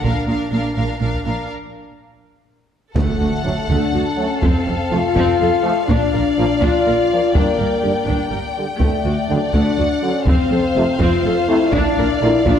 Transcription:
0.03 0.11 A#1 soft
0.03 0.12 A#2 medium
0.03 0.28 D4 soft
0.03 0.26 A#4 soft
0.03 0.27 F5 soft
0.03 taiko medium
0.27 0.36 A#1 soft
0.27 0.36 A#2 soft
0.27 0.51 D4 soft
0.27 0.50 A#4 soft
0.27 0.51 F5 soft
0.51 0.60 A#1 soft
0.51 0.61 A#2 soft
0.51 0.76 D4 soft
0.51 0.75 A#4 soft
0.51 0.74 F5 soft
0.75 0.85 A#1 soft
0.75 0.85 A#2 soft
0.75 0.99 D4 soft
0.75 0.99 A#4 soft
0.75 1.00 F5 soft
1.00 1.09 A#1 soft
1.00 1.09 A#2 soft
1.00 1.23 D4 soft
1.00 1.24 A#4 soft
1.00 1.24 F5 soft
1.14 taiko soft
1.25 1.34 A#1 soft
1.25 1.34 A#2 soft
1.25 1.49 D4 soft
1.25 1.49 A#4 soft
1.25 1.49 F5 soft
2.95 3.04 D2 medium
2.95 3.65 D3 medium
2.95 3.65 A3 medium
2.95 3.19 A3 soft
2.95 5.84 A4 soft
2.95 4.38 F#5 soft
2.95 taiko medium
2.95 impact medium
3.20 3.28 D2 soft
3.20 3.29 F#4 soft
3.44 3.53 D2 soft
3.44 3.53 F#3 soft
3.44 3.52 A3 soft
3.44 3.54 D4 soft
3.69 3.77 D2 medium
3.69 3.78 D2 medium
3.69 3.93 A3 medium
3.69 4.17 D4 medium
3.69 taiko medium
3.94 4.02 D2 soft
3.94 4.03 F#4 soft
4.16 4.25 F#3 medium
4.16 4.25 A3 soft
4.16 4.43 C#4 medium
4.42 4.51 F1 medium
4.42 4.50 F2 medium
4.42 4.66 C4 medium
4.42 4.92 C4 medium
4.42 7.31 F5 soft
4.42 taiko medium
4.66 4.76 F1 soft
4.66 4.74 F2 soft
4.66 4.76 A4 medium
4.90 5.00 F1 soft
4.90 4.99 F2 soft
4.90 5.00 F3 medium
4.90 4.99 A3 medium
4.90 4.99 F4 soft
4.90 5.89 F4 loud
5.16 5.24 F1 medium
5.16 5.24 F2 medium
5.16 5.38 C4 medium
5.16 taiko medium
5.40 5.48 F1 soft
5.40 5.48 F2 soft
5.40 5.49 A4 medium
5.63 5.72 F3 medium
5.63 5.72 A3 medium
5.88 5.97 A#1 medium
5.88 5.98 A#2 medium
5.88 6.60 D4 loud
5.88 6.12 D4 medium
5.88 8.61 D5 medium
5.88 taiko loud
6.14 6.22 A#1 soft
6.14 6.22 A#2 medium
6.14 6.22 A#4 soft
6.38 6.46 A#1 medium
6.38 6.46 A#2 medium
6.38 6.46 F3 medium
6.38 6.46 A#3 medium
6.38 6.46 F4 soft
6.62 6.70 A#1 medium
6.62 6.70 A#2 medium
6.62 6.85 D4 medium
6.62 7.34 F4 loud
6.62 taiko medium
6.86 6.95 A#1 soft
6.86 6.95 A#2 soft
6.86 6.94 A#4 soft
7.12 7.20 F3 medium
7.12 7.21 A#3 medium
7.35 7.43 G1 medium
7.35 7.44 G2 medium
7.35 8.57 A#3 medium
7.35 7.57 D4 medium
7.35 9.54 G5 medium
7.35 taiko medium
7.59 7.67 G1 soft
7.59 7.68 G2 soft
7.59 7.67 A#4 soft
7.82 7.91 G1 soft
7.82 7.92 G2 soft
7.82 7.93 D3 soft
7.82 7.93 G3 soft
7.82 7.90 G4 soft
8.06 8.15 G1 medium
8.06 8.16 G2 soft
8.06 8.30 D4 soft
8.06 taiko medium
8.30 8.39 G1 soft
8.30 8.40 G2 soft
8.30 8.38 A#4 soft
8.58 8.66 D3 soft
8.58 8.66 G3 soft
8.78 8.89 D2 medium
8.78 9.02 A3 medium
8.78 9.49 A3 medium
8.78 10.22 D5 soft
8.78 taiko medium
9.05 9.13 D2 soft
9.05 9.13 F#4 soft
9.29 9.38 D2 soft
9.29 9.39 D3 medium
9.29 9.39 F#3 soft
9.29 9.38 D4 soft
9.53 9.62 D2 medium
9.53 9.77 A3 medium
9.53 10.02 D4 medium
9.53 10.28 F#5 medium
9.53 taiko medium
9.78 9.86 D2 soft
9.78 9.86 F#4 soft
10.02 10.11 D3 medium
10.02 10.11 F#3 medium
10.02 10.27 C#4 medium
10.26 10.35 F1 medium
10.26 10.35 F2 medium
10.26 10.50 C4 medium
10.26 10.99 C4 medium
10.26 11.73 C5 medium
10.26 12.59 F5 medium
10.26 taiko medium
10.51 10.59 F1 soft
10.51 10.59 F2 medium
10.51 10.60 A4 medium
10.76 10.84 F1 medium
10.76 10.84 F2 soft
10.76 10.84 C3 medium
10.76 10.85 A3 medium
10.76 10.84 F4 soft
11.00 11.08 F1 medium
11.00 11.08 F2 medium
11.00 11.23 C4 medium
11.00 11.49 F4 loud
11.00 taiko medium
11.24 11.32 F1 soft
11.24 11.32 F2 medium
11.24 11.34 A4 medium
11.47 11.57 C3 medium
11.47 11.57 A3 medium
11.47 11.72 E4 medium
11.73 11.81 A#1 medium
11.73 11.81 A#2 medium
11.73 12.21 D4 loud
11.73 11.96 D4 medium
11.73 12.59 D5 medium
11.73 taiko loud
11.97 12.05 A#1 medium
11.97 12.06 A#2 medium
11.97 12.06 A#4 medium
12.21 12.30 A#1 medium
12.21 12.30 A#2 medium
12.21 12.30 D3 medium
12.21 12.31 A#3 medium
12.21 12.46 E4 loud
12.21 12.31 F4 medium
12.45 12.54 A#1 medium
12.45 12.54 A#2 medium
12.45 12.59 D4 medium
12.45 12.59 F4 loud
12.45 taiko medium

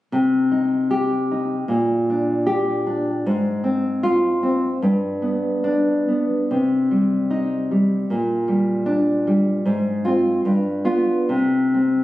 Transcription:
0.12 1.68 C3 medium
0.52 1.30 D#4 soft
0.91 1.55 G4 medium
1.31 1.71 D#4 soft
1.68 3.21 A#2 medium
2.10 2.85 D4 medium
2.47 3.09 G4 medium
2.87 3.26 D4 medium
3.26 4.80 G#2 medium
3.64 4.42 C4 medium
4.03 4.67 F4 medium
4.43 4.83 C4 medium
4.82 6.47 G2 medium
5.22 6.07 B3 medium
5.64 6.34 D4 medium
6.08 6.51 B3 soft
6.51 8.07 C3 medium
6.91 7.70 G3 soft
7.31 7.94 D#4 medium
7.71 8.11 G3 soft
8.10 9.60 A#2 medium
8.48 9.26 G3 medium
8.86 9.48 D4 medium
9.27 9.65 G3 medium
9.66 10.42 G#2 medium
10.05 10.41 C4 medium
10.05 10.40 F4 medium
10.45 11.27 G2 medium
10.85 11.25 B3 medium
10.85 11.25 F4 medium
11.29 12.04 C3 medium
11.74 12.04 C4 soft

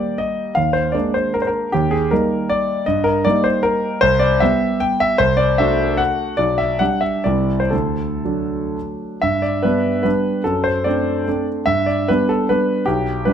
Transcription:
0.00 0.53 G3 soft
0.00 0.53 A#3 soft
0.00 0.53 G4 soft
0.00 0.18 D5 medium
0.18 0.56 D#5 medium
0.55 0.94 D#2 soft
0.55 0.74 F5 medium
0.73 0.94 C5 medium
0.92 1.69 G#3 soft
0.92 1.69 A#3 soft
0.92 1.69 D4 soft
0.92 1.14 D5 medium
1.14 1.34 C5 medium
1.34 1.41 A#4 medium
1.42 1.48 C5 medium
1.47 1.73 A#4 medium
1.72 2.11 D#2 medium
1.72 1.92 G4 medium
1.91 2.11 G#4 medium
2.11 2.84 G3 soft
2.11 2.84 A#3 soft
2.11 2.84 D#4 soft
2.11 2.50 A#4 medium
2.49 2.87 D5 medium
2.86 3.24 G2 medium
2.86 3.05 D#5 medium
3.04 3.24 A#4 medium
3.25 3.99 G3 soft
3.25 3.99 A#3 soft
3.25 3.99 D#4 soft
3.25 3.45 D5 medium
3.44 3.64 C5 medium
3.63 4.01 A#4 medium
4.01 4.40 C2 medium
4.01 4.20 C5 loud
4.19 4.40 D5 medium
4.40 5.16 G3 soft
4.40 5.16 B3 soft
4.40 5.16 G4 soft
4.40 4.81 E5 medium
4.80 5.00 G5 medium
5.00 5.19 E5 medium
5.18 5.57 C2 medium
5.18 5.38 C5 loud
5.37 5.58 D5 medium
5.58 6.36 A3 soft
5.58 6.36 D4 soft
5.58 6.36 F#4 medium
5.58 5.99 E5 medium
5.97 6.38 F#5 medium
6.37 6.79 B1 medium
6.37 6.58 D5 medium
6.58 6.80 E5 medium
6.79 7.22 G3 soft
6.79 7.22 D4 soft
6.79 7.22 G4 soft
6.79 7.03 F#5 medium
7.01 7.25 E5 medium
7.24 7.71 C2 soft
7.24 7.69 G3 soft
7.24 7.69 C4 soft
7.24 7.69 E4 soft
7.24 7.60 D5 medium
7.60 7.72 C5 medium
7.70 8.22 D2 medium
7.70 8.74 A4 medium
8.25 9.19 F#3 soft
8.25 9.19 A3 soft
8.25 9.19 D4 soft
9.22 9.63 G2 medium
9.22 9.43 E5 medium
9.42 9.64 D5 medium
9.63 10.02 G3 soft
9.63 10.02 B3 soft
9.63 10.02 D4 soft
9.63 10.01 B4 medium
10.03 10.41 G3 soft
10.03 10.41 B3 soft
10.03 10.42 D4 soft
10.03 10.44 B4 medium
10.44 10.84 F#2 medium
10.44 10.64 A4 medium
10.64 10.85 C5 medium
10.84 11.23 A3 soft
10.84 11.23 C4 soft
10.84 11.23 D4 medium
10.84 11.46 D5 medium
11.28 11.63 A3 soft
11.28 11.64 C4 soft
11.28 11.64 D4 soft
11.66 12.07 G2 medium
11.66 11.86 E5 medium
11.86 12.08 D5 medium
12.08 12.46 G3 soft
12.08 12.46 B3 soft
12.08 12.47 D4 medium
12.08 12.30 B4 medium
12.29 12.49 A4 medium
12.49 12.84 G3 soft
12.49 12.84 B3 soft
12.49 12.84 D4 soft
12.49 12.87 B4 medium
12.86 13.25 B1 medium
12.86 13.26 G4 medium
13.25 13.33 G3 soft
13.25 13.33 D4 medium
13.25 13.33 B4 medium

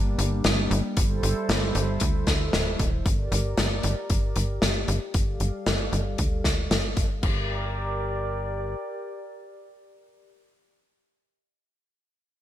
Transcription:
0.00 0.16 G1 medium
0.00 3.02 G3 medium
0.00 0.95 A#3 medium
0.00 0.95 D4 medium
0.19 0.42 G1 medium
0.19 closed hi-hat medium
0.44 0.68 G1 medium
0.44 snare loud
0.44 closed hi-hat medium
0.71 0.83 G1 loud
0.71 closed hi-hat medium
0.97 1.21 G1 medium
0.97 3.04 E4 medium
0.97 3.04 A4 medium
0.97 3.04 C5 medium
0.97 3.04 E5 medium
0.97 kick loud
0.97 closed hi-hat loud
1.23 1.35 G1 medium
1.23 closed hi-hat medium
1.49 1.73 G1 medium
1.49 snare loud
1.49 closed hi-hat loud
1.75 1.99 G1 loud
1.75 closed hi-hat medium
2.00 2.25 D2 medium
2.00 kick loud
2.00 closed hi-hat loud
2.27 2.51 D2 medium
2.27 kick medium
2.27 snare medium
2.27 closed hi-hat medium
2.53 2.77 D1 medium
2.53 snare loud
2.53 closed hi-hat loud
2.79 3.03 D1 loud
2.79 kick loud
2.79 closed hi-hat medium
3.06 3.29 G1 loud
3.06 7.19 G4 medium
3.06 5.12 A#4 medium
3.06 5.12 D5 medium
3.06 kick loud
3.06 closed hi-hat medium
3.32 3.55 G1 medium
3.32 closed hi-hat medium
3.58 3.81 G1 loud
3.58 snare loud
3.58 closed hi-hat loud
3.83 3.96 G1 medium
3.83 closed hi-hat medium
4.10 4.34 G1 medium
4.10 kick loud
4.10 closed hi-hat medium
4.36 4.60 G1 medium
4.36 closed hi-hat medium
4.62 4.86 G1 medium
4.62 snare loud
4.62 closed hi-hat loud
4.88 5.00 G1 loud
4.88 closed hi-hat medium
5.14 5.38 G1 medium
5.14 7.21 G3 medium
5.14 7.21 A4 medium
5.14 7.21 D5 medium
5.14 7.21 F5 medium
5.14 kick loud
5.14 closed hi-hat medium
5.40 5.52 G1 medium
5.40 closed hi-hat medium
5.66 5.90 G1 loud
5.66 snare loud
5.66 closed hi-hat medium
5.93 6.16 G1 medium
5.93 closed hi-hat medium
6.18 6.42 D2 medium
6.18 kick loud
6.18 closed hi-hat medium
6.44 6.68 D2 medium
6.44 kick medium
6.44 snare medium
6.44 closed hi-hat medium
6.71 6.94 G1 medium
6.71 snare loud
6.71 closed hi-hat medium
6.97 7.21 G1 medium
6.97 kick medium
6.97 closed hi-hat medium
7.23 8.76 G1 medium
7.23 10.30 G4 medium
7.23 10.30 A#4 medium
7.23 10.30 D5 medium
7.23 kick loud
7.23 crash medium

